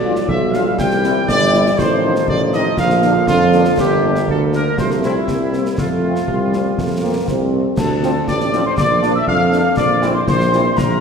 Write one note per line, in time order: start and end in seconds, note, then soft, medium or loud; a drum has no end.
0.00 0.20 B1 medium
0.00 0.74 F3 medium
0.00 1.74 G3 medium
0.00 0.13 G3 medium
0.00 0.13 D4 medium
0.00 0.13 F4 medium
0.00 0.25 D5 medium
0.16 snare medium
0.28 0.70 B1 medium
0.28 0.52 E5 loud
0.28 concert bass drum medium
0.52 0.62 G3 medium
0.52 0.63 D4 medium
0.52 0.63 F4 medium
0.52 0.78 F5 medium
0.52 snare medium
0.77 1.20 C2 medium
0.77 1.78 E3 medium
0.77 1.24 G5 loud
0.77 concert bass drum medium
0.77 snare medium
0.91 snare medium
1.03 1.13 G3 medium
1.03 1.12 C4 medium
1.03 1.12 E4 medium
1.03 snare medium
1.28 1.65 G1 medium
1.28 1.74 D5 loud
1.28 concert bass drum medium
1.28 snare medium
1.53 1.62 G3 medium
1.53 1.63 C4 medium
1.53 1.63 E4 medium
1.53 snare medium
1.66 snare medium
1.77 2.19 A1 medium
1.77 2.74 D#3 medium
1.77 3.78 F3 medium
1.77 2.28 C5 loud
1.77 concert bass drum medium
1.77 snare medium
2.04 2.13 F3 medium
2.04 2.13 C4 medium
2.04 2.13 D#4 medium
2.16 snare medium
2.27 2.69 A1 medium
2.27 2.39 D5 loud
2.27 concert bass drum medium
2.52 2.63 F3 medium
2.52 2.63 C4 medium
2.52 2.63 D#4 medium
2.52 2.76 D#5 loud
2.52 snare medium
2.77 3.20 A#1 medium
2.77 4.78 D3 medium
2.77 3.24 F5 loud
2.77 concert bass drum medium
2.77 snare medium
2.90 snare medium
3.02 3.13 F3 medium
3.02 3.13 A#3 medium
3.02 3.13 D4 medium
3.02 snare medium
3.27 3.70 F2 medium
3.27 3.74 F4 loud
3.27 concert bass drum medium
3.27 snare medium
3.52 3.62 F3 medium
3.52 3.62 A#3 medium
3.52 3.63 D4 medium
3.52 snare medium
3.65 snare medium
3.78 4.20 G1 medium
3.78 4.74 A#3 medium
3.78 4.25 G4 loud
3.78 concert bass drum medium
3.78 snare medium
3.78 crash soft
4.04 4.13 A#3 medium
4.04 4.13 D4 medium
4.16 snare medium
4.27 4.69 D2 medium
4.27 4.40 A4 loud
4.27 concert bass drum medium
4.53 4.63 A#3 medium
4.53 4.63 D4 medium
4.53 4.76 A#4 loud
4.53 snare medium
4.78 5.20 C2 medium
4.78 5.25 F3 medium
4.78 5.28 A3 medium
4.78 4.89 C5 medium
4.78 concert bass drum medium
4.78 snare medium
4.91 snare medium
5.03 5.12 F3 medium
5.03 5.12 A3 medium
5.03 5.12 C4 medium
5.03 5.74 E4 medium
5.03 snare medium
5.28 5.70 C2 medium
5.28 5.78 G3 medium
5.28 5.78 A#3 medium
5.28 concert bass drum medium
5.28 snare medium
5.53 5.63 G3 medium
5.53 5.63 A#3 medium
5.53 5.63 C4 medium
5.53 snare medium
5.66 snare medium
5.77 6.19 F2 medium
5.77 6.23 F3 medium
5.77 6.20 A3 medium
5.77 7.48 F4 medium
5.77 concert bass drum medium
5.77 snare medium
6.03 6.12 F3 soft
6.03 6.12 A3 medium
6.03 6.12 C4 medium
6.16 snare medium
6.27 6.69 C2 medium
6.27 6.74 G3 medium
6.27 concert bass drum medium
6.52 6.61 F3 medium
6.52 6.62 A3 soft
6.52 6.62 C4 medium
6.52 snare soft
6.77 7.19 F2 medium
6.77 7.03 A3 medium
6.77 concert bass drum medium
6.77 snare medium
7.02 7.11 F3 medium
7.02 7.12 A3 soft
7.02 7.26 A#3 medium
7.02 7.11 C4 soft
7.27 7.65 C2 medium
7.27 7.77 C4 medium
7.27 concert bass drum medium
7.27 snare medium
7.53 7.62 F3 soft
7.53 7.62 A3 soft
7.53 7.62 C4 soft
7.77 8.19 D2 medium
7.77 8.24 A4 medium
7.77 8.24 A5 medium
7.77 concert bass drum medium
7.77 snare medium
7.77 crash medium
8.02 8.11 F3 medium
8.02 8.11 C4 medium
8.02 8.11 D4 medium
8.02 snare medium
8.27 8.69 A1 medium
8.27 8.63 D5 loud
8.27 8.62 D6 medium
8.27 concert bass drum medium
8.27 snare medium
8.40 snare medium
8.52 8.61 F3 medium
8.52 8.62 F3 medium
8.52 8.61 C4 medium
8.52 8.62 C4 medium
8.52 8.62 D4 medium
8.52 snare medium
8.65 8.71 C5 medium
8.65 8.77 C6 medium
8.77 9.19 A#1 medium
8.77 9.12 D5 medium
8.77 9.12 D6 medium
8.77 concert bass drum medium
8.77 snare medium
9.02 9.11 F3 medium
9.02 9.12 F3 medium
9.02 9.12 A#3 medium
9.02 9.11 D4 medium
9.02 9.12 D4 medium
9.02 snare medium
9.15 9.28 E5 loud
9.15 9.26 E6 medium
9.26 9.69 F2 medium
9.26 9.73 F5 loud
9.26 9.74 F6 medium
9.26 concert bass drum medium
9.52 9.61 F3 medium
9.52 9.62 F3 medium
9.52 9.61 A#3 medium
9.52 9.61 D4 medium
9.52 9.62 D4 medium
9.52 snare medium
9.76 10.19 A#1 medium
9.76 10.11 D5 loud
9.76 10.12 D6 medium
9.76 concert bass drum medium
9.76 snare medium
10.02 10.11 E3 medium
10.02 10.11 G3 medium
10.02 10.10 C4 medium
10.02 10.11 C4 medium
10.02 10.11 E4 medium
10.02 snare medium
10.14 10.26 C5 medium
10.14 10.19 C6 medium
10.27 10.69 A#1 medium
10.27 10.73 C5 loud
10.27 10.78 C6 medium
10.27 concert bass drum medium
10.27 snare medium
10.40 snare medium
10.52 10.61 E3 medium
10.52 10.62 G3 medium
10.52 10.60 C4 medium
10.52 10.62 C4 medium
10.52 10.62 E4 medium
10.52 snare medium
10.76 11.00 A#1 medium
10.76 11.00 A#4 medium
10.76 11.00 A#5 medium
10.76 concert bass drum medium
10.76 snare medium